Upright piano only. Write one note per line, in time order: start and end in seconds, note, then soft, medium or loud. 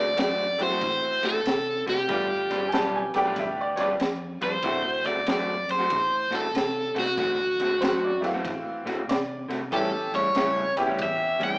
2.69 2.74 G#5 medium
2.73 2.94 A5 loud
2.96 3.16 G#5 medium
3.17 3.37 G5 medium
3.40 3.59 E5 medium
3.61 3.79 D5 medium
3.76 3.81 C#5 medium
3.80 4.20 D5 medium
7.81 8.02 C5 medium
8.04 8.24 D5 medium
8.21 8.26 E5 medium
8.25 9.07 F5 medium
9.09 9.60 D5 medium